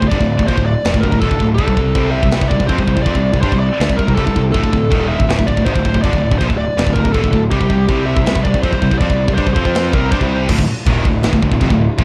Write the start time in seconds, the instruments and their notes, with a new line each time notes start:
0.02 picked electric bass D1, distorted electric guitar D2 A2, kick
0.08 picked electric bass G1, distorted electric guitar G2 D3, lead electric guitar D5, kick, china
0.20 picked electric bass D1, distorted electric guitar D2 A2, kick
0.39 picked electric bass D1, distorted electric guitar D2 A2, kick
0.48 picked electric bass A#1, distorted electric guitar A#2 F3, lead electric guitar C5, kick, china
0.57 picked electric bass D1, distorted electric guitar D2 A2, kick
0.66 lead electric guitar D5
0.85 picked electric bass F1, distorted electric guitar F2 C3, snare, china
0.94 picked electric bass D1, distorted electric guitar D2 A2, kick
1.00 picked electric bass D1, lead electric guitar A#4, kick
1.04 distorted electric guitar D2 A2
1.12 picked electric bass D1, distorted electric guitar D2 A2, kick
1.20 picked electric bass D#1, distorted electric guitar D#2, lead electric guitar A4, kick, china
1.24 distorted electric guitar A#2
1.30 picked electric bass D1, distorted electric guitar D2 A2, kick
1.40 picked electric bass D1, distorted electric guitar D2 A2, kick
1.55 picked electric bass C2, lead electric guitar A4, kick, china
1.59 distorted electric guitar C3 G3
1.67 picked electric bass C2, distorted electric guitar C3 G3, kick
1.76 picked electric bass C2, distorted electric guitar C3 G3, kick
1.95 picked electric bass C2, distorted electric guitar C3 G3 C4, kick, china
2.11 lead electric guitar E5
2.23 picked electric bass C2, distorted electric guitar C3 G3, kick
2.31 picked electric bass C2, distorted electric guitar C3 G3, snare, china
2.41 picked electric bass C2, distorted electric guitar C3 G3, kick
2.48 picked electric bass C2, distorted electric guitar C3 G3, lead electric guitar D5, kick
2.59 picked electric bass C2, distorted electric guitar C3 G3, kick
2.68 picked electric bass F2, distorted electric guitar F3 C4, lead electric guitar C5, kick, china
2.77 picked electric bass C2, distorted electric guitar C3 G3, kick
2.87 picked electric bass C2, distorted electric guitar C3 G3, kick
2.96 picked electric bass C2, distorted electric guitar C3 G3, kick
3.03 picked electric bass F2, lead electric guitar D5, kick, china
3.07 distorted electric guitar F3 C4
3.15 picked electric bass C2, distorted electric guitar C3 G3, kick
3.33 picked electric bass C2, distorted electric guitar C3 G3, kick
3.41 picked electric bass G2, distorted electric guitar G3 D4, lead electric guitar C5, kick, china
3.52 picked electric bass C2, distorted electric guitar C3 G3, kick
3.60 lead electric guitar D5
3.80 picked electric bass D2, distorted electric guitar D3 A3, snare, china
3.89 picked electric bass C2, distorted electric guitar C3 G3, kick
3.97 picked electric bass C2, distorted electric guitar C3 G3, lead electric guitar A#4, kick
4.07 picked electric bass C2, distorted electric guitar C3 G3, kick
4.15 picked electric bass C2, distorted electric guitar C3 G3, lead electric guitar A4, kick, china
4.26 picked electric bass C2, distorted electric guitar C3 G3, kick
4.36 picked electric bass C2, distorted electric guitar C3 G3, kick
4.52 picked electric bass D1, distorted electric guitar D2 A2, lead electric guitar A4, kick, china
4.63 picked electric bass D1, distorted electric guitar D2 A2, kick
4.72 picked electric bass D1, distorted electric guitar D2 A2, kick
4.90 picked electric bass D#1, distorted electric guitar D#2 A#2 D#3, kick, china
5.09 lead electric guitar E5
5.18 picked electric bass D1, distorted electric guitar D2 A2, kick
5.28 picked electric bass D1, distorted electric guitar D2 A2, snare, china
5.39 picked electric bass D1, distorted electric guitar D2 A2, kick
5.47 picked electric bass D1, distorted electric guitar D2 A2, lead electric guitar D5, kick
5.56 picked electric bass D1, distorted electric guitar D2 A2, kick
5.65 picked electric bass G#1, distorted electric guitar G#2 D#3, lead electric guitar C5, kick, china
5.75 picked electric bass D1, distorted electric guitar D2 A2, kick
5.85 picked electric bass D1, distorted electric guitar D2 A2, kick
5.94 picked electric bass D1, distorted electric guitar D2 A2, kick
6.02 picked electric bass G1, distorted electric guitar G2 D3, lead electric guitar D5, kick, china
6.12 picked electric bass D1, distorted electric guitar D2 A2, kick
6.31 picked electric bass D1, distorted electric guitar D2 A2, kick
6.38 picked electric bass A#1, distorted electric guitar A#2 F3, lead electric guitar C5, kick, china
6.49 picked electric bass D1, distorted electric guitar D2 A2, kick
6.58 lead electric guitar D5
6.77 picked electric bass F1, distorted electric guitar F2 C3, snare, china
6.86 picked electric bass D1, distorted electric guitar D2 A2, kick
6.93 picked electric bass D1, distorted electric guitar D2, lead electric guitar A#4, kick
6.97 distorted electric guitar A2
7.04 picked electric bass D1, distorted electric guitar D2 A2, kick
7.12 picked electric bass D#1, distorted electric guitar D#2 A#2, lead electric guitar A4, kick, china
7.24 picked electric bass D1, distorted electric guitar D2 A2, kick
7.32 picked electric bass D1, distorted electric guitar D2 A2, kick
7.51 picked electric bass C2, distorted electric guitar C3 G3, lead electric guitar G4, kick, china
7.61 picked electric bass C2, distorted electric guitar C3 G3, kick
7.70 picked electric bass C2, distorted electric guitar C3 G3, kick
7.88 picked electric bass C2, distorted electric guitar C3 G3 C4, kick, china
8.06 lead electric guitar E5
8.16 picked electric bass C2, distorted electric guitar C3 G3, kick
8.26 picked electric bass C2, distorted electric guitar C3 G3, snare, china
8.35 picked electric bass C2, distorted electric guitar C3 G3, kick
8.43 picked electric bass C2, distorted electric guitar C3 G3, lead electric guitar D5, kick
8.54 picked electric bass C2, distorted electric guitar C3 G3, kick
8.62 picked electric bass F2, distorted electric guitar F3 C4, lead electric guitar C5, kick, china
8.72 picked electric bass C2, distorted electric guitar C3 G3, kick
8.82 picked electric bass C2, distorted electric guitar C3 G3, kick
8.91 picked electric bass C2, distorted electric guitar C3 G3, kick
8.98 picked electric bass F2, distorted electric guitar F3 C4, lead electric guitar D5, kick, china
9.09 picked electric bass C2, distorted electric guitar C3 G3, kick
9.28 picked electric bass C2, distorted electric guitar C3 G3, kick
9.34 picked electric bass G2, distorted electric guitar G3 D4, lead electric guitar C5, kick, china
9.46 picked electric bass C2, distorted electric guitar C3 G3, kick
9.54 picked electric bass F2, distorted electric guitar F3 C4, lead electric guitar C5, kick
9.65 picked electric bass F2, distorted electric guitar F3 C4 F4, kick
9.75 snare, china
9.93 picked electric bass C2, distorted electric guitar C3 G3 C4, lead electric guitar A#4, kick
10.11 picked electric bass G2, distorted electric guitar G3 D4, lead electric guitar C5, kick, china
10.21 picked electric bass C2, distorted electric guitar C3 G3 C4, kick
10.48 picked electric bass D1, distorted electric guitar D2 A2, string section D3 A3 E4 F4, kick, crash, china
10.58 picked electric bass D1, distorted electric guitar D2 A2, kick
10.68 muted distorted electric guitar stroke, muted picked electric bass stroke
10.86 picked electric bass D#1, distorted electric guitar D#2 A#2 D#3, kick, china
11.05 picked electric bass D1, distorted electric guitar D2 A2, kick
11.23 picked electric bass G#1, distorted electric guitar G#2 D#3, snare, china
11.33 picked electric bass D1, distorted electric guitar D2 A2, kick
11.42 picked electric bass D1, distorted electric guitar D2 A2, kick
11.51 picked electric bass D1, distorted electric guitar D2 A2, kick
11.61 picked electric bass F1, distorted electric guitar F2 C3, kick, china
11.70 picked electric bass D1, distorted electric guitar D2 A2, kick
11.98 picked electric bass A#1, distorted electric guitar A#2 F3, kick, china